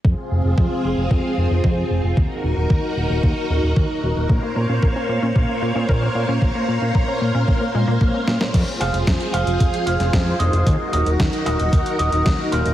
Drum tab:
CC |----------------|----------------|----------------|----------------|
HH |----------------|----------------|----------------|----------------|
SD |----------------|----------------|----------------|--------------oo|
BD |o---o---o---o---|o---o---o---o---|o---o---o---o---|o---o---o---o---|

CC |x---------------|----------------|
HH |x-xxxxxxxxxxx-xx|x-xxxxxxxxxxx-xx|
SD |----o------oo---|----o-------o---|
BD |o---o---o---o---|o---o---o---o---|